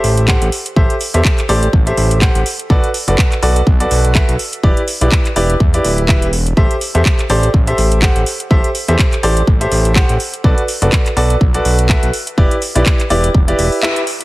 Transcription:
Already playing: G4 A4 C5 E5
0.04 A1, open hi-hat
0.17 closed hi-hat
0.28 G4 A4 C5 F#5, kick, clap
0.42 A1, closed hi-hat
0.52 open hi-hat
0.66 closed hi-hat
0.76 A1 G4 A4 C5 E5, kick
0.90 closed hi-hat
1.01 open hi-hat
1.14 E2 G4 A4 C5 E5, closed hi-hat
1.25 kick, clap
1.38 clap, closed hi-hat
1.49 A1 G4 A4 C5 D5, open hi-hat
1.63 closed hi-hat
1.73 A1, kick
1.87 G4 A4 C5 E5, closed hi-hat
1.97 A1, open hi-hat
2.11 closed hi-hat
2.22 G4 A4 C5 F#5, kick, clap
2.35 A1, closed hi-hat
2.46 open hi-hat
2.59 closed hi-hat
2.70 B1 F#4 A4 B4 D5, kick
2.84 closed hi-hat
2.94 open hi-hat
3.08 F#1 F#4 A4 B4 D5, closed hi-hat
3.18 kick, clap
3.32 clap, closed hi-hat
3.42 B1 F#4 A4 B4 D5, open hi-hat
3.56 closed hi-hat
3.67 B1, kick
3.80 F#4 A4 B4 D5, closed hi-hat
3.91 B1, open hi-hat
4.05 closed hi-hat
4.15 F#4 A4 B4 E5, kick, clap
4.29 B1, closed hi-hat
4.39 open hi-hat
4.53 closed hi-hat
4.63 E1 E4 G4 B4 D5, kick
4.77 closed hi-hat
4.88 open hi-hat
5.01 B1 E4 G4 B4 D5, closed hi-hat
5.12 kick, clap
5.25 clap, closed hi-hat
5.36 E1 E4 G4 B4 D5, open hi-hat
5.50 closed hi-hat
5.60 E2, kick
5.74 E4 G4 B4 D5, closed hi-hat
5.84 D1, open hi-hat
5.98 closed hi-hat
6.09 E4 G4 B4 E5, kick, clap
6.22 E1, closed hi-hat
6.33 open hi-hat
6.46 closed hi-hat
6.57 A1 G4 A4 C5 E5, kick
6.71 closed hi-hat
6.81 open hi-hat
6.95 E2 G4 A4 C5 E5, closed hi-hat
7.05 kick, clap
7.19 clap, closed hi-hat
7.30 A1 G4 A4 C5 D5, open hi-hat
7.43 closed hi-hat
7.54 A1, kick
7.67 G4 A4 C5 E5, closed hi-hat
7.78 A1, open hi-hat
7.92 closed hi-hat
8.02 G4 A4 C5 F#5, kick, clap
8.16 A1, closed hi-hat
8.26 open hi-hat
8.40 closed hi-hat
8.51 A1 G4 A4 C5 E5, kick
8.64 closed hi-hat
8.75 open hi-hat
8.88 E2 G4 A4 C5 E5, closed hi-hat
8.99 kick, clap
9.13 clap, closed hi-hat
9.23 A1 G4 A4 C5 D5, open hi-hat
9.37 closed hi-hat
9.47 A1, kick
9.61 G4 A4 C5 E5, closed hi-hat
9.72 A1, open hi-hat
9.85 closed hi-hat
9.96 G4 A4 C5 F#5, kick, clap
10.09 A1, closed hi-hat
10.20 open hi-hat
10.34 closed hi-hat
10.44 B1 F#4 A4 B4 D5, kick
10.58 closed hi-hat
10.68 open hi-hat
10.82 F#1 F#4 A4 B4 D5, closed hi-hat
10.93 kick, clap
11.06 clap, closed hi-hat
11.17 B1 F#4 A4 B4 D5, open hi-hat
11.30 closed hi-hat
11.41 B1, kick
11.54 F#4 A4 B4 D5, closed hi-hat
11.65 B1, open hi-hat
11.79 closed hi-hat
11.89 F#4 A4 B4 E5, kick, clap
12.03 B1, closed hi-hat
12.13 open hi-hat
12.27 closed hi-hat
12.38 E1 E4 G4 B4 D5, kick
12.51 closed hi-hat
12.62 open hi-hat
12.75 B1 E4 G4 B4 D5, closed hi-hat
12.86 kick, clap
13.00 clap, closed hi-hat
13.10 E1 E4 G4 B4 D5, open hi-hat
13.24 closed hi-hat
13.34 E1, kick
13.48 E4 G4 B4 D5, closed hi-hat
13.59 E1, open hi-hat
13.72 open hi-hat
13.83 E4 G4 B4 E5, clap
13.96 closed hi-hat
14.07 open hi-hat
14.21 closed hi-hat

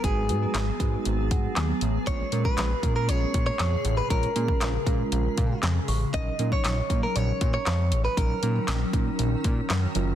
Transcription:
Already playing: F#3 B3 G#4
0.04 G#1 G#3 D#4 F#4 G#4 B4, kick, closed hi-hat
0.29 G#2 G#3 D#4 F#4 B4, closed hi-hat
0.54 G#1, snare, clap, closed hi-hat
0.80 G#2 G#3 D#4 F#4 B4, kick, closed hi-hat
1.05 G#1, closed hi-hat
1.31 G#2 F#5, kick, closed hi-hat
1.56 D#2 G#5, snare, clap, closed hi-hat
1.81 A1, closed hi-hat
2.07 A#1 A#2 C#3 G#3 C#4 F4 A#4 C#5, kick, closed hi-hat
2.32 A#2 G#3 C#4 F4 A#4, closed hi-hat
2.45 B4, kick
2.58 A#1, snare, clap, closed hi-hat
2.83 A#2 G#3 C#4 F4 A#4, kick, closed hi-hat
2.96 A#4
3.08 A#1 C#5, closed hi-hat
3.34 A#2, kick, closed hi-hat
3.46 C#5
3.59 F2, snare, clap, closed hi-hat
3.85 A1, closed hi-hat
3.97 B4
4.10 A#1 G#3 C#4 F4 A#4 C#5, kick, closed hi-hat
4.23 closed hi-hat
4.36 A#2 G#3 C#4 F4 A#4, closed hi-hat
4.48 kick
4.61 A#1, snare, clap, closed hi-hat
4.86 A#2 G#3 C#4 F4 A#4, kick, closed hi-hat
5.12 A#1, closed hi-hat
5.38 A#2 F5, kick, closed hi-hat
5.63 F2 G#5, snare, clap, closed hi-hat
5.88 A1 C#6, open hi-hat
6.14 A#1 D#3 F#3 C#4 D#4 A#4 D#5, kick, closed hi-hat
6.39 A#2 F#3 C#4 D#4 A#4, closed hi-hat
6.52 C#5, kick
6.64 A#1, snare, clap, closed hi-hat
6.90 A#2 F#3 C#4 D#4 A#4, kick, closed hi-hat
7.03 A#4
7.16 A#1 C#5, closed hi-hat
7.41 A#2, kick, closed hi-hat
7.54 C#5
7.66 F2, snare, clap, closed hi-hat
7.92 A1, closed hi-hat
8.05 B4
8.17 A#1 F#3 C#4 D#4 A#4, kick, closed hi-hat
8.43 A#2 F#3 C#4 D#4 A#4, closed hi-hat
8.68 A#1, snare, clap, closed hi-hat
8.93 A#2 F#3 C#4 D#4 A#4, kick, closed hi-hat
9.19 A#1, closed hi-hat
9.44 A#2, kick, closed hi-hat
9.70 F#2, snare, clap, closed hi-hat
9.95 F#1 F#3 C#4 F4 A#4, closed hi-hat

